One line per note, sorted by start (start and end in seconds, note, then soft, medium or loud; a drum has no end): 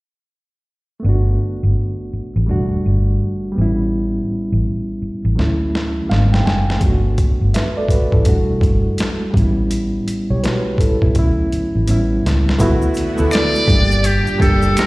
1.00 2.43 A3 medium
1.00 2.44 B3 medium
1.04 1.35 G1 medium
1.04 2.46 D4 medium
1.09 2.48 F#4 medium
1.63 1.74 G1 medium
2.13 muted fingered electric bass stroke soft
2.36 2.47 A1 medium
2.46 2.68 E1 medium
2.46 3.51 G3 medium
2.46 3.56 A3 medium
2.46 3.57 D4 medium
2.51 3.58 F#4 medium
2.72 muted fingered electric bass stroke soft
2.86 3.16 G1 medium
3.52 5.31 G3 medium
3.52 5.33 B3 medium
3.58 4.19 A1 medium
3.58 5.34 C#4 soft
3.58 5.36 E4 medium
4.52 4.63 A1 medium
5.02 muted fingered electric bass stroke soft
5.25 5.36 A1 medium
5.35 6.00 D2 medium
5.35 6.08 F#3 medium
5.35 6.09 A3 medium
5.35 6.10 C#4 medium
5.35 snare soft
5.40 6.11 E4 medium
5.75 snare medium
6.07 6.41 G#1 medium
6.07 6.80 G3 medium
6.07 6.81 A#3 medium
6.07 6.82 C4 medium
6.07 6.30 F5 medium
6.11 6.83 D#4 medium
6.11 snare medium
6.33 6.45 G5 medium
6.33 snare medium
6.46 6.77 F#1 medium
6.46 6.79 G#5 medium
6.46 snare medium
6.70 snare medium
6.77 8.21 A3 medium
6.77 8.22 B3 medium
6.81 7.13 G1 medium
6.81 8.24 D4 medium
6.81 kick medium
6.81 closed hi-hat medium
6.86 7.54 F#4 medium
7.18 kick medium
7.18 closed hi-hat medium
7.41 7.52 G1 medium
7.54 7.76 B4 soft
7.54 7.75 E5 medium
7.54 snare medium
7.54 closed hi-hat medium
7.77 7.90 A4 soft
7.77 7.89 D5 medium
7.88 8.12 F#4 soft
7.88 8.11 B4 medium
7.88 muted fingered electric bass stroke soft
7.88 kick medium
7.88 closed hi-hat medium
8.12 8.24 A1 medium
8.12 8.47 E4 soft
8.12 8.47 A4 medium
8.12 kick medium
8.24 8.58 E1 medium
8.24 9.29 G3 medium
8.24 9.34 A3 medium
8.24 9.35 D4 medium
8.24 kick medium
8.24 closed hi-hat medium
8.29 9.36 F#4 medium
8.61 8.82 G1 medium
8.61 kick medium
8.61 closed hi-hat soft
8.98 snare medium
8.98 closed hi-hat medium
9.31 11.09 G3 medium
9.31 10.05 B3 medium
9.31 kick medium
9.35 9.97 A1 medium
9.35 10.06 C#4 medium
9.35 closed hi-hat medium
9.40 10.08 E4 medium
9.71 closed hi-hat medium
10.08 closed hi-hat medium
10.30 10.41 B1 medium
10.30 10.43 G4 soft
10.30 10.43 C#5 medium
10.43 10.78 F#4 medium
10.43 10.77 B4 medium
10.43 snare medium
10.43 closed hi-hat medium
10.78 11.01 E4 soft
10.78 11.01 A4 medium
10.78 muted fingered electric bass stroke soft
10.78 kick medium
10.78 closed hi-hat medium
11.02 11.14 B1 medium
11.02 11.36 B3 soft
11.02 11.18 E4 medium
11.02 kick medium
11.14 11.47 D2 medium
11.14 11.87 F#3 medium
11.14 11.88 A3 medium
11.14 11.88 C#4 medium
11.14 kick medium
11.14 closed hi-hat medium
11.19 11.89 E4 medium
11.52 muted fingered electric bass stroke soft
11.52 closed hi-hat medium
11.75 11.86 A1 medium
11.86 12.19 A1 medium
11.86 12.59 G3 medium
11.86 12.58 B3 medium
11.86 12.60 C#4 medium
11.86 closed hi-hat medium
11.91 12.60 E4 medium
12.25 12.56 C#2 medium
12.25 snare medium
12.25 closed hi-hat soft
12.49 snare medium
12.58 12.91 D2 loud
12.58 13.67 D3 medium
12.58 13.02 A3 loud
12.58 13.03 B3 loud
12.58 13.68 B3 medium
12.58 13.67 E4 medium
12.58 13.04 E4 loud
12.58 13.67 F#4 medium
12.58 kick loud
12.58 closed hi-hat medium
12.58 shaker medium
12.63 13.04 F#4 loud
12.82 shaker soft
12.94 closed hi-hat medium
12.94 shaker soft
13.16 13.31 D2 medium
13.16 13.58 A3 medium
13.16 13.58 B3 medium
13.16 13.59 E4 medium
13.16 shaker soft
13.21 13.60 A4 medium
13.31 14.07 D5 loud
13.31 finger snap medium
13.31 snare loud
13.31 closed hi-hat medium
13.31 shaker medium
13.55 shaker soft
13.66 14.19 G1 medium
13.66 14.87 A#2 medium
13.66 14.28 G3 medium
13.66 13.76 A3 medium
13.66 14.87 D4 medium
13.66 14.30 D4 medium
13.66 14.87 G4 medium
13.66 kick loud
13.70 14.30 G4 medium
13.70 closed hi-hat medium
13.74 14.32 A#3 medium
13.91 shaker soft
14.04 14.43 G4 medium
14.04 closed hi-hat medium
14.04 shaker medium
14.27 muted fingered electric bass stroke soft
14.27 shaker soft
14.39 14.72 F#1 medium
14.39 14.87 G3 medium
14.39 14.87 A#3 medium
14.39 14.87 D4 medium
14.39 14.77 A4 medium
14.39 kick medium
14.39 closed hi-hat medium
14.44 14.87 G4 medium
14.62 shaker soft
14.77 14.87 A#4 loud
14.77 finger snap medium
14.77 snare loud
14.77 closed hi-hat medium
14.77 shaker medium